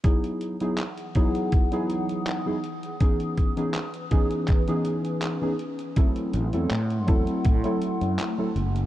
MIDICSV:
0, 0, Header, 1, 5, 480
1, 0, Start_track
1, 0, Key_signature, 4, "major"
1, 0, Tempo, 740741
1, 27, Time_signature, 4, 2, 24, 8
1, 5743, End_track
2, 0, Start_track
2, 0, Title_t, "Ambient pad"
2, 0, Program_c, 0, 92
2, 26, Note_on_c, 0, 52, 77
2, 26, Note_on_c, 0, 68, 73
2, 26, Note_on_c, 0, 78, 74
2, 28, Note_on_c, 0, 87, 85
2, 1927, Note_off_c, 0, 52, 0
2, 1927, Note_off_c, 0, 78, 0
2, 1928, Note_off_c, 0, 68, 0
2, 1947, Note_on_c, 0, 71, 72
2, 1949, Note_on_c, 0, 61, 81
2, 3842, Note_off_c, 0, 87, 0
2, 3848, Note_off_c, 0, 71, 0
2, 3849, Note_off_c, 0, 61, 0
2, 3864, Note_on_c, 0, 57, 83
2, 3867, Note_on_c, 0, 78, 74
2, 3868, Note_on_c, 0, 84, 89
2, 5530, Note_off_c, 0, 78, 0
2, 5530, Note_off_c, 0, 84, 0
2, 5544, Note_on_c, 0, 80, 78
2, 5546, Note_on_c, 0, 88, 91
2, 5743, Note_off_c, 0, 57, 0
2, 5743, Note_off_c, 0, 80, 0
2, 5743, Note_off_c, 0, 88, 0
2, 5743, End_track
3, 0, Start_track
3, 0, Title_t, "Synth keys"
3, 0, Program_c, 1, 88
3, 23, Note_on_c, 1, 54, 74
3, 24, Note_on_c, 1, 59, 69
3, 27, Note_on_c, 1, 63, 67
3, 30, Note_on_c, 1, 64, 69
3, 31, Note_on_c, 1, 68, 83
3, 362, Note_off_c, 1, 54, 0
3, 362, Note_off_c, 1, 59, 0
3, 364, Note_off_c, 1, 63, 0
3, 365, Note_off_c, 1, 64, 0
3, 366, Note_off_c, 1, 68, 0
3, 393, Note_on_c, 1, 54, 76
3, 396, Note_on_c, 1, 59, 73
3, 397, Note_on_c, 1, 63, 70
3, 400, Note_on_c, 1, 64, 70
3, 404, Note_on_c, 1, 68, 84
3, 511, Note_off_c, 1, 54, 0
3, 513, Note_off_c, 1, 59, 0
3, 513, Note_off_c, 1, 63, 0
3, 515, Note_off_c, 1, 64, 0
3, 517, Note_off_c, 1, 68, 0
3, 748, Note_on_c, 1, 54, 85
3, 749, Note_on_c, 1, 59, 76
3, 751, Note_on_c, 1, 63, 76
3, 754, Note_on_c, 1, 64, 78
3, 756, Note_on_c, 1, 68, 95
3, 1084, Note_off_c, 1, 54, 0
3, 1084, Note_off_c, 1, 59, 0
3, 1086, Note_off_c, 1, 63, 0
3, 1087, Note_off_c, 1, 64, 0
3, 1088, Note_off_c, 1, 68, 0
3, 1111, Note_on_c, 1, 54, 88
3, 1115, Note_on_c, 1, 59, 76
3, 1116, Note_on_c, 1, 63, 79
3, 1120, Note_on_c, 1, 64, 77
3, 1123, Note_on_c, 1, 68, 96
3, 1562, Note_off_c, 1, 54, 0
3, 1564, Note_off_c, 1, 59, 0
3, 1565, Note_off_c, 1, 63, 0
3, 1567, Note_off_c, 1, 64, 0
3, 1568, Note_off_c, 1, 68, 0
3, 1590, Note_on_c, 1, 54, 77
3, 1593, Note_on_c, 1, 59, 72
3, 1596, Note_on_c, 1, 63, 72
3, 1597, Note_on_c, 1, 64, 71
3, 1600, Note_on_c, 1, 68, 84
3, 1666, Note_off_c, 1, 54, 0
3, 1667, Note_off_c, 1, 59, 0
3, 1668, Note_off_c, 1, 63, 0
3, 1669, Note_off_c, 1, 64, 0
3, 1670, Note_off_c, 1, 68, 0
3, 1946, Note_on_c, 1, 52, 74
3, 1946, Note_on_c, 1, 59, 71
3, 1951, Note_on_c, 1, 61, 70
3, 1951, Note_on_c, 1, 63, 70
3, 1955, Note_on_c, 1, 68, 82
3, 2283, Note_off_c, 1, 52, 0
3, 2283, Note_off_c, 1, 59, 0
3, 2286, Note_off_c, 1, 61, 0
3, 2286, Note_off_c, 1, 63, 0
3, 2288, Note_off_c, 1, 68, 0
3, 2309, Note_on_c, 1, 52, 78
3, 2311, Note_on_c, 1, 59, 72
3, 2314, Note_on_c, 1, 61, 73
3, 2316, Note_on_c, 1, 63, 71
3, 2319, Note_on_c, 1, 68, 88
3, 2429, Note_off_c, 1, 52, 0
3, 2431, Note_off_c, 1, 59, 0
3, 2432, Note_off_c, 1, 61, 0
3, 2433, Note_off_c, 1, 63, 0
3, 2435, Note_off_c, 1, 68, 0
3, 2661, Note_on_c, 1, 52, 85
3, 2664, Note_on_c, 1, 59, 77
3, 2665, Note_on_c, 1, 61, 81
3, 2669, Note_on_c, 1, 63, 77
3, 2669, Note_on_c, 1, 68, 98
3, 3000, Note_off_c, 1, 52, 0
3, 3002, Note_off_c, 1, 59, 0
3, 3003, Note_off_c, 1, 61, 0
3, 3004, Note_off_c, 1, 68, 0
3, 3005, Note_off_c, 1, 63, 0
3, 3032, Note_on_c, 1, 52, 84
3, 3032, Note_on_c, 1, 59, 80
3, 3034, Note_on_c, 1, 61, 78
3, 3038, Note_on_c, 1, 63, 80
3, 3039, Note_on_c, 1, 68, 100
3, 3482, Note_off_c, 1, 52, 0
3, 3483, Note_off_c, 1, 59, 0
3, 3484, Note_off_c, 1, 61, 0
3, 3485, Note_off_c, 1, 63, 0
3, 3486, Note_off_c, 1, 68, 0
3, 3506, Note_on_c, 1, 52, 81
3, 3509, Note_on_c, 1, 59, 71
3, 3512, Note_on_c, 1, 61, 72
3, 3514, Note_on_c, 1, 63, 73
3, 3517, Note_on_c, 1, 68, 87
3, 3584, Note_off_c, 1, 52, 0
3, 3585, Note_off_c, 1, 59, 0
3, 3586, Note_off_c, 1, 61, 0
3, 3588, Note_off_c, 1, 63, 0
3, 3589, Note_off_c, 1, 68, 0
3, 3861, Note_on_c, 1, 54, 76
3, 3861, Note_on_c, 1, 57, 71
3, 3865, Note_on_c, 1, 60, 72
3, 3867, Note_on_c, 1, 64, 72
3, 3869, Note_on_c, 1, 69, 83
3, 4201, Note_off_c, 1, 54, 0
3, 4201, Note_off_c, 1, 57, 0
3, 4203, Note_off_c, 1, 60, 0
3, 4204, Note_off_c, 1, 64, 0
3, 4205, Note_off_c, 1, 69, 0
3, 4230, Note_on_c, 1, 54, 79
3, 4232, Note_on_c, 1, 57, 71
3, 4235, Note_on_c, 1, 60, 72
3, 4236, Note_on_c, 1, 64, 72
3, 4238, Note_on_c, 1, 69, 88
3, 4350, Note_off_c, 1, 54, 0
3, 4351, Note_off_c, 1, 57, 0
3, 4353, Note_off_c, 1, 60, 0
3, 4353, Note_off_c, 1, 64, 0
3, 4354, Note_off_c, 1, 69, 0
3, 4577, Note_on_c, 1, 54, 89
3, 4580, Note_on_c, 1, 57, 81
3, 4582, Note_on_c, 1, 60, 79
3, 4584, Note_on_c, 1, 64, 80
3, 4586, Note_on_c, 1, 69, 96
3, 4919, Note_off_c, 1, 54, 0
3, 4920, Note_off_c, 1, 57, 0
3, 4921, Note_off_c, 1, 60, 0
3, 4922, Note_off_c, 1, 64, 0
3, 4923, Note_off_c, 1, 69, 0
3, 4949, Note_on_c, 1, 54, 89
3, 4952, Note_on_c, 1, 57, 84
3, 4956, Note_on_c, 1, 60, 79
3, 4957, Note_on_c, 1, 64, 82
3, 4960, Note_on_c, 1, 69, 99
3, 5401, Note_off_c, 1, 54, 0
3, 5403, Note_off_c, 1, 57, 0
3, 5405, Note_off_c, 1, 60, 0
3, 5405, Note_off_c, 1, 64, 0
3, 5406, Note_off_c, 1, 69, 0
3, 5430, Note_on_c, 1, 54, 80
3, 5431, Note_on_c, 1, 57, 74
3, 5435, Note_on_c, 1, 60, 71
3, 5438, Note_on_c, 1, 64, 74
3, 5440, Note_on_c, 1, 69, 90
3, 5505, Note_off_c, 1, 54, 0
3, 5506, Note_off_c, 1, 57, 0
3, 5508, Note_off_c, 1, 60, 0
3, 5509, Note_off_c, 1, 64, 0
3, 5511, Note_off_c, 1, 69, 0
3, 5743, End_track
4, 0, Start_track
4, 0, Title_t, "Fretless electric bass"
4, 0, Program_c, 2, 35
4, 4106, Note_on_c, 2, 33, 93
4, 4214, Note_off_c, 2, 33, 0
4, 4233, Note_on_c, 2, 40, 89
4, 4329, Note_off_c, 2, 40, 0
4, 4346, Note_on_c, 2, 45, 76
4, 4587, Note_off_c, 2, 45, 0
4, 4587, Note_on_c, 2, 40, 83
4, 4695, Note_off_c, 2, 40, 0
4, 4829, Note_on_c, 2, 45, 73
4, 4936, Note_off_c, 2, 45, 0
4, 5193, Note_on_c, 2, 42, 78
4, 5289, Note_off_c, 2, 42, 0
4, 5544, Note_on_c, 2, 30, 89
4, 5743, Note_off_c, 2, 30, 0
4, 5743, End_track
5, 0, Start_track
5, 0, Title_t, "Drums"
5, 26, Note_on_c, 9, 42, 83
5, 28, Note_on_c, 9, 36, 104
5, 91, Note_off_c, 9, 42, 0
5, 93, Note_off_c, 9, 36, 0
5, 155, Note_on_c, 9, 42, 38
5, 220, Note_off_c, 9, 42, 0
5, 266, Note_on_c, 9, 42, 64
5, 331, Note_off_c, 9, 42, 0
5, 392, Note_on_c, 9, 42, 37
5, 456, Note_off_c, 9, 42, 0
5, 505, Note_on_c, 9, 39, 108
5, 505, Note_on_c, 9, 42, 84
5, 570, Note_off_c, 9, 39, 0
5, 570, Note_off_c, 9, 42, 0
5, 632, Note_on_c, 9, 42, 36
5, 697, Note_off_c, 9, 42, 0
5, 745, Note_on_c, 9, 42, 65
5, 748, Note_on_c, 9, 36, 95
5, 810, Note_off_c, 9, 42, 0
5, 813, Note_off_c, 9, 36, 0
5, 874, Note_on_c, 9, 42, 37
5, 939, Note_off_c, 9, 42, 0
5, 986, Note_on_c, 9, 42, 88
5, 989, Note_on_c, 9, 36, 112
5, 1051, Note_off_c, 9, 42, 0
5, 1053, Note_off_c, 9, 36, 0
5, 1113, Note_on_c, 9, 42, 38
5, 1178, Note_off_c, 9, 42, 0
5, 1229, Note_on_c, 9, 42, 62
5, 1294, Note_off_c, 9, 42, 0
5, 1356, Note_on_c, 9, 42, 38
5, 1421, Note_off_c, 9, 42, 0
5, 1470, Note_on_c, 9, 39, 110
5, 1470, Note_on_c, 9, 42, 91
5, 1534, Note_off_c, 9, 39, 0
5, 1534, Note_off_c, 9, 42, 0
5, 1708, Note_on_c, 9, 42, 37
5, 1773, Note_off_c, 9, 42, 0
5, 1835, Note_on_c, 9, 42, 38
5, 1899, Note_off_c, 9, 42, 0
5, 1947, Note_on_c, 9, 42, 88
5, 1948, Note_on_c, 9, 36, 111
5, 2012, Note_off_c, 9, 42, 0
5, 2013, Note_off_c, 9, 36, 0
5, 2073, Note_on_c, 9, 42, 37
5, 2138, Note_off_c, 9, 42, 0
5, 2187, Note_on_c, 9, 42, 64
5, 2188, Note_on_c, 9, 36, 58
5, 2251, Note_off_c, 9, 42, 0
5, 2252, Note_off_c, 9, 36, 0
5, 2314, Note_on_c, 9, 42, 37
5, 2379, Note_off_c, 9, 42, 0
5, 2424, Note_on_c, 9, 39, 111
5, 2424, Note_on_c, 9, 42, 86
5, 2489, Note_off_c, 9, 39, 0
5, 2489, Note_off_c, 9, 42, 0
5, 2551, Note_on_c, 9, 42, 39
5, 2616, Note_off_c, 9, 42, 0
5, 2664, Note_on_c, 9, 42, 64
5, 2667, Note_on_c, 9, 36, 99
5, 2729, Note_off_c, 9, 42, 0
5, 2732, Note_off_c, 9, 36, 0
5, 2791, Note_on_c, 9, 42, 39
5, 2856, Note_off_c, 9, 42, 0
5, 2903, Note_on_c, 9, 39, 60
5, 2903, Note_on_c, 9, 42, 85
5, 2907, Note_on_c, 9, 36, 110
5, 2967, Note_off_c, 9, 39, 0
5, 2967, Note_off_c, 9, 42, 0
5, 2972, Note_off_c, 9, 36, 0
5, 3031, Note_on_c, 9, 42, 38
5, 3095, Note_off_c, 9, 42, 0
5, 3141, Note_on_c, 9, 42, 64
5, 3206, Note_off_c, 9, 42, 0
5, 3271, Note_on_c, 9, 42, 39
5, 3335, Note_off_c, 9, 42, 0
5, 3383, Note_on_c, 9, 39, 112
5, 3383, Note_on_c, 9, 42, 93
5, 3447, Note_off_c, 9, 39, 0
5, 3447, Note_off_c, 9, 42, 0
5, 3624, Note_on_c, 9, 42, 39
5, 3689, Note_off_c, 9, 42, 0
5, 3751, Note_on_c, 9, 42, 39
5, 3815, Note_off_c, 9, 42, 0
5, 3864, Note_on_c, 9, 42, 86
5, 3867, Note_on_c, 9, 36, 117
5, 3929, Note_off_c, 9, 42, 0
5, 3932, Note_off_c, 9, 36, 0
5, 3991, Note_on_c, 9, 42, 38
5, 4056, Note_off_c, 9, 42, 0
5, 4105, Note_on_c, 9, 42, 63
5, 4170, Note_off_c, 9, 42, 0
5, 4231, Note_on_c, 9, 42, 39
5, 4296, Note_off_c, 9, 42, 0
5, 4345, Note_on_c, 9, 39, 113
5, 4345, Note_on_c, 9, 42, 86
5, 4410, Note_off_c, 9, 39, 0
5, 4410, Note_off_c, 9, 42, 0
5, 4473, Note_on_c, 9, 42, 38
5, 4538, Note_off_c, 9, 42, 0
5, 4585, Note_on_c, 9, 42, 65
5, 4588, Note_on_c, 9, 36, 102
5, 4650, Note_off_c, 9, 42, 0
5, 4653, Note_off_c, 9, 36, 0
5, 4711, Note_on_c, 9, 42, 39
5, 4776, Note_off_c, 9, 42, 0
5, 4825, Note_on_c, 9, 42, 86
5, 4829, Note_on_c, 9, 36, 119
5, 4890, Note_off_c, 9, 42, 0
5, 4894, Note_off_c, 9, 36, 0
5, 4951, Note_on_c, 9, 42, 37
5, 5016, Note_off_c, 9, 42, 0
5, 5065, Note_on_c, 9, 42, 64
5, 5130, Note_off_c, 9, 42, 0
5, 5193, Note_on_c, 9, 42, 37
5, 5258, Note_off_c, 9, 42, 0
5, 5308, Note_on_c, 9, 39, 115
5, 5308, Note_on_c, 9, 42, 91
5, 5373, Note_off_c, 9, 39, 0
5, 5373, Note_off_c, 9, 42, 0
5, 5548, Note_on_c, 9, 42, 39
5, 5613, Note_off_c, 9, 42, 0
5, 5676, Note_on_c, 9, 42, 38
5, 5741, Note_off_c, 9, 42, 0
5, 5743, End_track
0, 0, End_of_file